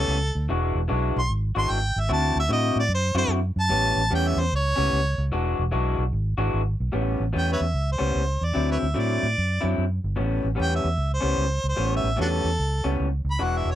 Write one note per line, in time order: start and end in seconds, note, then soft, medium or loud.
0.00 0.17 A2 medium
0.00 0.17 G3 medium
0.00 0.17 B3 medium
0.00 0.17 C#4 medium
0.00 0.49 A4 loud
0.08 0.29 C#2 medium
0.35 0.47 D2 medium
0.49 0.70 E1 medium
0.49 0.79 E3 medium
0.49 0.80 G#3 medium
0.49 0.80 D4 medium
0.49 0.80 F#4 medium
0.75 0.87 E1 medium
0.88 1.11 B1 medium
0.88 1.19 E3 medium
0.88 1.19 G#3 loud
0.88 1.19 D4 loud
0.88 1.20 F#4 medium
1.16 1.28 B1 medium
1.16 1.31 C6 medium
1.30 1.50 G#1 loud
1.55 1.68 G#1 medium
1.55 1.78 E3 medium
1.55 1.78 G#3 medium
1.55 1.78 D4 medium
1.55 1.78 F#4 medium
1.55 1.73 C6 loud
1.70 1.91 G#1 medium
1.70 2.02 G5 medium
1.96 2.08 G#1 medium
1.96 2.12 E5 medium
2.09 2.31 D2 medium
2.09 2.40 D3 medium
2.09 2.40 C4 medium
2.09 2.40 E4 medium
2.09 2.40 F#4 medium
2.13 2.37 A5 medium
2.36 2.48 D2 medium
2.36 2.52 E5 loud
2.49 2.71 A2 medium
2.49 2.80 D3 medium
2.49 2.80 C4 medium
2.49 2.80 E4 medium
2.49 2.80 F#4 loud
2.49 2.77 D#5 medium
2.76 2.88 A2 medium
2.76 2.92 D5 loud
2.89 3.10 F#2 loud
2.95 3.17 C5 loud
3.15 3.27 F#2 medium
3.15 3.39 D3 medium
3.15 3.38 C4 medium
3.15 3.38 E4 medium
3.15 3.38 F#4 medium
3.15 3.31 C5 loud
3.28 3.50 F#2 medium
3.56 3.71 F#2 loud
3.56 4.11 A5 loud
3.69 3.91 A1 medium
3.69 4.00 A2 medium
3.69 4.01 G3 medium
3.69 4.01 B3 medium
3.69 4.01 C#4 medium
3.96 4.08 A1 medium
4.10 4.32 E2 medium
4.10 4.41 A2 medium
4.10 4.41 G3 loud
4.10 4.41 B3 loud
4.10 4.42 C#4 loud
4.15 4.30 G5 medium
4.28 4.41 E5 medium
4.37 4.49 E2 medium
4.37 4.52 C5 loud
4.52 4.73 C#2 loud
4.52 5.32 C#5 loud
4.76 4.90 C#2 medium
4.76 5.00 A2 medium
4.76 5.00 G3 medium
4.76 4.99 B3 medium
4.76 4.99 C#4 medium
4.93 5.13 C#2 medium
5.18 5.30 C#2 medium
5.32 5.53 E1 medium
5.32 5.62 E3 medium
5.32 5.63 G#3 medium
5.32 5.63 D4 medium
5.32 5.63 F#4 medium
5.59 5.71 E1 loud
5.72 5.94 B1 medium
5.72 6.02 E3 medium
5.72 6.02 G#3 medium
5.72 6.03 D4 loud
5.72 6.03 F#4 loud
5.99 6.10 B1 medium
6.13 6.34 G#1 loud
6.38 6.50 G#1 loud
6.38 6.61 E3 medium
6.38 6.61 G#3 medium
6.38 6.61 D4 medium
6.38 6.60 F#4 medium
6.54 6.74 G#1 medium
6.80 6.92 B1 medium
6.92 7.14 A1 medium
6.92 7.23 A2 medium
6.92 7.23 G3 medium
6.92 7.23 B3 medium
6.92 7.24 C#4 medium
7.20 7.32 A1 medium
7.33 7.55 E2 medium
7.33 7.63 A2 medium
7.33 7.64 G3 medium
7.33 7.64 B3 medium
7.33 7.64 C#4 medium
7.38 7.49 G5 medium
7.53 7.60 B4 medium
7.53 7.61 C#5 medium
7.53 7.89 E5 medium
7.61 7.72 E2 medium
7.74 7.95 C#2 medium
7.92 8.46 C5 medium
7.98 8.12 C#2 medium
7.98 8.22 A2 medium
7.98 8.22 G3 medium
7.98 8.22 B3 medium
7.98 8.22 C#4 medium
8.16 8.36 C#2 medium
8.41 8.53 E2 medium
8.41 8.69 D5 medium
8.54 8.76 D2 medium
8.54 8.84 D3 medium
8.54 8.85 F#3 medium
8.54 8.85 C4 medium
8.54 8.85 E4 medium
8.71 8.78 B4 soft
8.71 8.77 C#5 soft
8.71 9.01 E5 medium
8.83 8.94 D2 medium
8.94 9.17 A2 medium
8.94 9.25 D3 medium
8.94 9.25 F#3 medium
8.94 9.25 C4 medium
8.94 9.26 E4 medium
9.00 9.76 D5 medium
9.23 9.34 A2 medium
9.38 9.58 F#2 medium
9.61 9.75 F#2 medium
9.61 9.84 D3 medium
9.61 9.84 F#3 medium
9.61 9.84 C4 medium
9.61 9.84 E4 medium
9.78 9.98 F#2 medium
10.04 10.15 G1 medium
10.16 10.39 A1 medium
10.16 10.46 A2 medium
10.16 10.47 G3 medium
10.16 10.47 B3 medium
10.16 10.47 C#4 medium
10.44 10.55 A1 medium
10.55 10.86 A2 medium
10.55 10.87 G3 medium
10.55 10.87 B3 medium
10.55 10.87 C#4 medium
10.59 10.79 E2 medium
10.59 10.73 G5 medium
10.75 11.12 E5 medium
10.84 10.96 E2 medium
10.98 11.18 C#2 medium
11.14 11.65 C5 medium
11.21 11.35 C#2 medium
11.21 11.45 A2 medium
11.21 11.45 G3 medium
11.21 11.45 B3 medium
11.21 11.44 C#4 medium
11.38 11.59 C#2 medium
11.64 11.76 C#2 medium
11.69 11.93 C5 medium
11.76 11.99 A1 medium
11.76 12.07 A2 medium
11.76 12.07 G3 medium
11.76 12.08 B3 medium
11.76 12.08 C#4 medium
11.96 12.20 E5 medium
12.04 12.16 A1 medium
12.16 12.40 E2 medium
12.16 12.47 A2 medium
12.16 12.48 G3 medium
12.16 12.48 B3 medium
12.16 12.48 C#4 medium
12.21 12.29 D4 medium
12.21 12.27 F#4 medium
12.21 12.98 A4 medium
12.44 12.56 E2 medium
12.59 12.80 C#2 medium
12.84 12.97 C#2 medium
12.84 13.08 A2 medium
12.84 13.07 G3 medium
12.84 13.07 B3 medium
12.84 13.07 C#4 medium
13.00 13.21 C#2 medium
13.25 13.37 C#2 medium
13.31 13.45 B5 medium
13.39 13.61 E1 medium
13.39 13.70 E3 medium
13.39 13.70 G#3 medium
13.39 13.70 D4 medium
13.39 13.70 F#4 medium
13.44 13.59 F#5 medium
13.58 13.73 E5 medium
13.65 13.75 E1 medium
13.71 13.75 C#5 medium